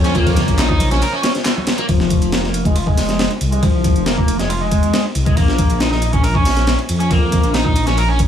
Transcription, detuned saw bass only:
0, 0, Header, 1, 2, 480
1, 0, Start_track
1, 0, Key_signature, -4, "minor"
1, 0, Tempo, 434783
1, 166, Time_signature, 4, 2, 24, 8
1, 9138, End_track
2, 0, Start_track
2, 0, Title_t, "Detuned saw bass"
2, 0, Program_c, 0, 39
2, 0, Note_on_c, 0, 41, 96
2, 499, Note_off_c, 0, 41, 0
2, 533, Note_on_c, 0, 34, 94
2, 980, Note_off_c, 0, 34, 0
2, 1004, Note_on_c, 0, 34, 92
2, 1123, Note_off_c, 0, 34, 0
2, 2083, Note_on_c, 0, 29, 98
2, 2417, Note_off_c, 0, 29, 0
2, 2447, Note_on_c, 0, 29, 93
2, 2898, Note_off_c, 0, 29, 0
2, 2927, Note_on_c, 0, 29, 93
2, 3617, Note_off_c, 0, 29, 0
2, 3761, Note_on_c, 0, 36, 95
2, 4336, Note_off_c, 0, 36, 0
2, 4369, Note_on_c, 0, 29, 96
2, 4819, Note_off_c, 0, 29, 0
2, 4850, Note_on_c, 0, 29, 90
2, 5328, Note_on_c, 0, 41, 83
2, 5345, Note_off_c, 0, 29, 0
2, 5427, Note_off_c, 0, 41, 0
2, 5684, Note_on_c, 0, 36, 91
2, 5889, Note_off_c, 0, 36, 0
2, 5929, Note_on_c, 0, 34, 99
2, 6260, Note_off_c, 0, 34, 0
2, 6291, Note_on_c, 0, 34, 98
2, 6739, Note_off_c, 0, 34, 0
2, 6771, Note_on_c, 0, 34, 96
2, 7460, Note_off_c, 0, 34, 0
2, 7605, Note_on_c, 0, 41, 97
2, 8179, Note_off_c, 0, 41, 0
2, 8207, Note_on_c, 0, 34, 97
2, 8657, Note_off_c, 0, 34, 0
2, 8688, Note_on_c, 0, 34, 95
2, 9138, Note_off_c, 0, 34, 0
2, 9138, End_track
0, 0, End_of_file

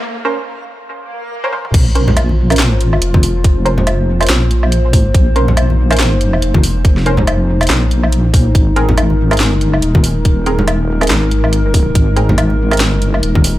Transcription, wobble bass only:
0, 0, Header, 1, 2, 480
1, 0, Start_track
1, 0, Key_signature, -5, "minor"
1, 0, Tempo, 425532
1, 44, Time_signature, 4, 2, 24, 8
1, 15325, End_track
2, 0, Start_track
2, 0, Title_t, "Wobble bass"
2, 0, Program_c, 0, 39
2, 1963, Note_on_c, 0, 34, 100
2, 2967, Note_off_c, 0, 34, 0
2, 2967, Note_on_c, 0, 33, 100
2, 3249, Note_off_c, 0, 33, 0
2, 3249, Note_on_c, 0, 32, 100
2, 3387, Note_off_c, 0, 32, 0
2, 3403, Note_on_c, 0, 29, 97
2, 4827, Note_off_c, 0, 29, 0
2, 4842, Note_on_c, 0, 34, 98
2, 5508, Note_off_c, 0, 34, 0
2, 5508, Note_on_c, 0, 33, 98
2, 5787, Note_off_c, 0, 33, 0
2, 5804, Note_on_c, 0, 34, 100
2, 6943, Note_off_c, 0, 34, 0
2, 6943, Note_on_c, 0, 31, 100
2, 7228, Note_off_c, 0, 31, 0
2, 7240, Note_on_c, 0, 29, 98
2, 8666, Note_off_c, 0, 29, 0
2, 8683, Note_on_c, 0, 34, 98
2, 9627, Note_off_c, 0, 34, 0
2, 9644, Note_on_c, 0, 32, 99
2, 10648, Note_off_c, 0, 32, 0
2, 10648, Note_on_c, 0, 31, 99
2, 10930, Note_off_c, 0, 31, 0
2, 10930, Note_on_c, 0, 30, 99
2, 11068, Note_off_c, 0, 30, 0
2, 11081, Note_on_c, 0, 27, 97
2, 12506, Note_off_c, 0, 27, 0
2, 12522, Note_on_c, 0, 32, 96
2, 13467, Note_off_c, 0, 32, 0
2, 13481, Note_on_c, 0, 32, 99
2, 14485, Note_off_c, 0, 32, 0
2, 14485, Note_on_c, 0, 31, 99
2, 14767, Note_off_c, 0, 31, 0
2, 14767, Note_on_c, 0, 30, 99
2, 14906, Note_off_c, 0, 30, 0
2, 14924, Note_on_c, 0, 27, 98
2, 15325, Note_off_c, 0, 27, 0
2, 15325, End_track
0, 0, End_of_file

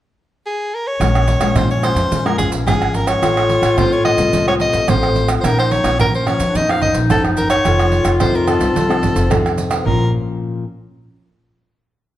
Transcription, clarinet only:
0, 0, Header, 1, 2, 480
1, 0, Start_track
1, 0, Key_signature, -5, "minor"
1, 0, Tempo, 552995
1, 871, Time_signature, 4, 2, 24, 8
1, 10564, End_track
2, 0, Start_track
2, 0, Title_t, "Clarinet"
2, 0, Program_c, 0, 71
2, 873, Note_on_c, 0, 61, 86
2, 2762, Note_off_c, 0, 61, 0
2, 2798, Note_on_c, 0, 65, 118
2, 4451, Note_off_c, 0, 65, 0
2, 4664, Note_on_c, 0, 65, 63
2, 4727, Note_on_c, 0, 63, 88
2, 4740, Note_off_c, 0, 65, 0
2, 5144, Note_on_c, 0, 60, 62
2, 5157, Note_off_c, 0, 63, 0
2, 5208, Note_on_c, 0, 61, 84
2, 5221, Note_off_c, 0, 60, 0
2, 5624, Note_off_c, 0, 61, 0
2, 5629, Note_on_c, 0, 62, 68
2, 5684, Note_on_c, 0, 63, 96
2, 5697, Note_off_c, 0, 62, 0
2, 6644, Note_on_c, 0, 65, 111
2, 6657, Note_off_c, 0, 63, 0
2, 8318, Note_off_c, 0, 65, 0
2, 8556, Note_on_c, 0, 65, 71
2, 8778, Note_off_c, 0, 65, 0
2, 10564, End_track
0, 0, End_of_file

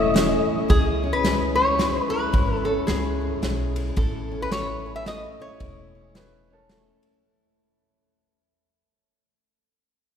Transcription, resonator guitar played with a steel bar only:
0, 0, Header, 1, 2, 480
1, 0, Start_track
1, 0, Tempo, 545455
1, 618, Time_signature, 3, 2, 24, 8
1, 8943, End_track
2, 0, Start_track
2, 0, Title_t, "Resonator guitar played with a steel bar"
2, 0, Program_c, 0, 25
2, 0, Note_on_c, 0, 76, 99
2, 389, Note_off_c, 0, 76, 0
2, 613, Note_on_c, 0, 68, 84
2, 993, Note_on_c, 0, 71, 93
2, 1014, Note_off_c, 0, 68, 0
2, 1358, Note_off_c, 0, 71, 0
2, 1368, Note_on_c, 0, 73, 92
2, 1844, Note_off_c, 0, 73, 0
2, 1847, Note_on_c, 0, 71, 96
2, 2243, Note_off_c, 0, 71, 0
2, 2243, Note_on_c, 0, 69, 96
2, 2331, Note_off_c, 0, 69, 0
2, 2331, Note_on_c, 0, 69, 76
2, 2521, Note_off_c, 0, 69, 0
2, 2525, Note_on_c, 0, 68, 74
2, 3269, Note_off_c, 0, 68, 0
2, 3497, Note_on_c, 0, 69, 77
2, 3856, Note_off_c, 0, 69, 0
2, 3893, Note_on_c, 0, 71, 88
2, 3976, Note_off_c, 0, 71, 0
2, 3980, Note_on_c, 0, 73, 95
2, 4358, Note_off_c, 0, 73, 0
2, 4362, Note_on_c, 0, 76, 88
2, 4449, Note_off_c, 0, 76, 0
2, 4466, Note_on_c, 0, 75, 89
2, 4764, Note_off_c, 0, 75, 0
2, 4765, Note_on_c, 0, 73, 86
2, 6163, Note_off_c, 0, 73, 0
2, 8943, End_track
0, 0, End_of_file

